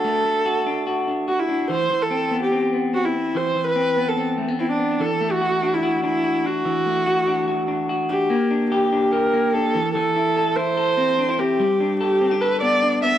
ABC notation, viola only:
X:1
M:4/4
L:1/16
Q:1/4=145
K:Ador
V:1 name="Viola"
A8- A2 z2 F E3 | c3 A4 G2 z3 F E3 | c3 B4 A2 z3 E D3 | A3 F4 E3 E4 F2- |
F12 z2 G2- | G4 G4 _B4 A4 | A6 c8 G2- | G4 G4 B2 d4 e2 |]